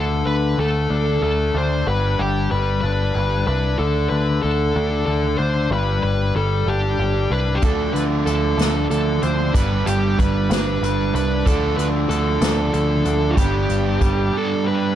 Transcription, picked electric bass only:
0.00 0.22 D2 loud
0.26 0.54 D2 medium
0.58 0.86 D2 medium
0.90 1.18 D2 medium
1.22 1.50 D2 medium
1.55 1.82 D2 medium
1.87 2.15 G1 medium
2.19 2.47 G1 medium
2.52 2.79 G1 medium
2.83 3.10 G1 medium
3.15 3.43 G1 medium
3.47 3.75 C2 medium
3.79 4.07 D2 loud
4.11 4.39 D2 medium
4.44 4.72 D2 medium
4.76 5.03 D2 loud
5.07 5.35 D2 medium
5.39 5.67 D2 medium
5.71 5.99 G1 loud
6.03 6.31 G1 medium
6.35 6.63 G1 medium
6.66 6.94 G1 medium
6.99 7.26 G1 medium
7.30 7.58 C2 medium
7.62 7.90 D2 loud
7.94 8.22 D2 medium
8.26 8.54 D2 medium
8.57 8.86 D2 loud
8.90 9.18 D2 medium
9.23 9.50 D2 medium
9.55 9.82 G1 medium
9.87 10.14 G1 medium
10.19 10.47 G1 medium
10.49 10.78 G1 loud
10.82 11.10 G1 medium
11.14 11.42 C2 medium
11.47 11.74 D2 loud
11.78 12.06 D2 medium
12.09 12.37 D2 medium
12.41 12.69 D2 loud
12.74 13.02 D2 medium
13.05 13.33 D2 medium
13.37 13.65 G1 medium
13.70 13.97 G1 medium
14.02 14.29 G1 medium

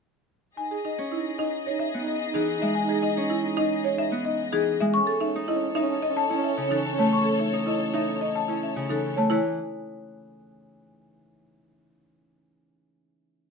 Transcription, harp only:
0.98 3.16 C#4 medium
1.94 4.11 B3 medium
2.35 4.51 E3 medium
2.62 4.80 G#3 medium
3.17 6.29 C#4 medium
4.12 4.96 B3 medium
4.53 4.96 E3 medium
4.81 4.96 G#3 medium
5.36 5.75 D#4 medium
5.76 7.52 D#4 medium
6.30 8.48 C#4 medium
6.57 8.75 C#3 medium
6.71 8.89 E3 medium
6.99 9.16 A3 medium
7.53 7.92 D#4 medium
7.94 11.50 D#4 medium
8.49 9.33 C#4 medium
8.76 9.33 C#3 medium
8.90 9.30 E3 medium
9.17 9.33 A3 medium
9.31 9.56 E3 medium

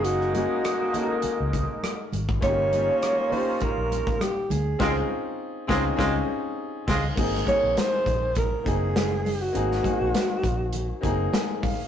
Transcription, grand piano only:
0.00 0.23 A#3 medium
0.00 0.23 C#4 medium
0.00 0.24 D#4 medium
0.00 0.24 F#4 medium
0.00 0.25 G#4 medium
0.33 0.72 A#3 medium
0.33 0.72 C#4 medium
0.33 0.73 D#4 medium
0.33 0.73 F#4 medium
0.33 0.74 G#4 medium
0.93 1.69 A#3 medium
0.93 1.70 C#4 medium
0.93 1.70 D#4 medium
0.93 1.71 F#4 medium
0.93 1.02 A4 medium
1.02 1.74 A#4 medium
2.41 2.61 A#3 medium
2.41 2.62 C#4 medium
2.41 2.62 D#4 medium
2.41 2.62 F4 medium
2.41 2.63 G4 medium
2.71 3.10 A#3 medium
2.71 3.10 C#4 medium
2.71 3.11 D#4 medium
2.71 3.11 F4 medium
2.71 3.12 G4 medium
3.30 4.07 A#3 medium
3.30 4.07 C#4 medium
3.30 4.08 D#4 medium
3.30 4.08 F4 medium
3.30 4.09 G4 medium
4.79 5.00 C4 medium
4.79 5.00 C#4 medium
4.79 5.01 D#4 medium
4.79 5.01 F4 medium
4.79 5.02 G#4 medium
5.67 5.89 C4 medium
5.67 5.89 C#4 medium
5.67 5.90 D#4 medium
5.67 5.90 F4 medium
5.67 5.91 G#4 medium
5.96 6.18 C4 medium
5.96 6.18 C#4 medium
5.96 6.19 D#4 medium
5.96 6.19 F4 medium
5.96 6.20 G#4 medium
7.16 7.36 A#3 medium
7.16 7.37 C4 medium
7.16 7.37 D#4 medium
7.16 7.38 F#4 medium
7.16 7.38 G#4 medium
7.46 8.22 A#3 medium
7.46 8.23 C4 medium
7.46 8.23 D#4 medium
7.46 8.24 F#4 medium
7.46 8.24 G#4 medium
8.64 9.21 A#3 medium
8.64 9.22 C4 medium
8.64 9.22 D#4 medium
8.64 9.23 F#4 medium
8.64 9.23 G#4 medium
9.53 9.73 A#3 medium
9.53 9.74 C4 medium
9.53 9.74 D#4 medium
9.53 9.75 F#4 medium
9.53 9.75 G#4 medium
9.82 10.59 A#3 medium
9.82 10.60 C4 medium
9.82 10.60 D#4 medium
9.82 10.61 F#4 medium
9.82 10.61 G#4 medium
11.01 11.58 A#3 medium
11.01 11.59 C4 medium
11.01 11.59 D#4 medium
11.01 11.60 F#4 medium
11.01 11.60 G#4 medium
11.01 11.30 A#5 medium
11.33 11.60 G#5 medium
11.62 11.88 F5 medium

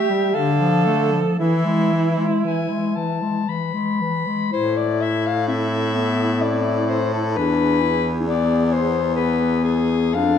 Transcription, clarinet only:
0.00 0.11 A3 medium
0.10 0.34 G3 medium
0.35 0.61 D3 medium
0.60 0.88 F3 medium
0.86 1.15 A3 medium
1.13 1.38 F3 medium
1.38 1.67 E3 medium
1.65 1.94 G#3 soft
1.93 2.19 E3 soft
2.18 2.46 G#3 medium
2.44 2.71 E3 medium
2.70 2.98 G#3 soft
2.96 3.24 E3 soft
3.22 3.50 G#3 soft
3.48 3.75 E3 soft
3.74 4.03 G#3 soft
4.01 4.28 E3 medium
4.27 4.52 G#3 soft
4.52 5.49 E4 medium
5.48 5.96 C4 medium
5.94 6.44 B3 soft
6.42 7.17 C4 medium
7.34 7.83 D4 medium
7.82 8.27 E4 medium
8.26 10.14 B3 medium
10.15 10.38 D4 medium

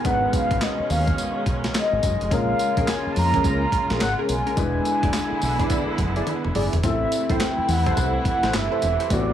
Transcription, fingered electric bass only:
0.05 0.26 G#1 loud
0.51 0.59 G#1 medium
0.80 muted fingered electric bass stroke soft
0.90 1.11 D#2 medium
1.46 1.67 B1 medium
1.93 2.00 G#1 medium
2.03 2.16 F#1 loud
2.21 2.29 F1 medium
2.32 2.52 A#1 loud
2.77 2.85 A#1 medium
3.06 muted fingered electric bass stroke soft
3.17 3.37 F2 medium
3.44 3.65 C#2 loud
3.91 3.98 A#1 medium
4.00 4.14 G#1 loud
4.29 4.42 B1 medium
4.57 4.78 E1 loud
5.03 5.11 E1 medium
5.32 muted fingered electric bass stroke soft
5.42 5.63 B1 medium
5.98 6.19 F#1 medium
6.45 6.53 E1 medium
6.55 6.68 F#1 medium
6.73 6.81 E1 medium
6.84 7.04 A1 loud
7.30 7.37 A1 medium
7.58 muted fingered electric bass stroke soft
7.68 7.89 E2 medium
7.97 8.18 C2 loud
8.43 8.51 A1 medium
8.54 8.67 G1 medium
8.83 8.95 E1 medium
9.10 9.31 A1 loud

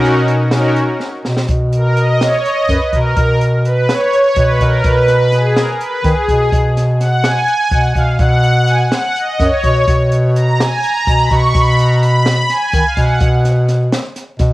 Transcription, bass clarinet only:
0.00 0.97 B2 medium
1.25 1.44 B2 medium
1.48 2.45 B2 loud
2.68 2.78 F#2 medium
2.93 3.12 B2 medium
3.16 3.91 B2 medium
4.37 4.56 B2 medium
4.61 4.80 B2 loud
4.84 5.81 B2 loud
6.04 6.14 D#3 medium
6.28 6.48 B2 medium
6.52 7.49 B2 medium
7.71 7.91 B2 medium
7.95 8.15 B2 medium
8.19 8.94 B2 loud
9.40 9.49 F#2 medium
9.64 9.83 B2 medium
9.87 10.83 B2 loud
11.07 11.26 B2 medium
11.31 11.50 B2 loud
11.55 12.50 B2 loud
12.74 12.83 D#3 medium
12.97 13.16 B2 medium
13.21 13.95 B2 loud
14.39 14.53 B2 medium

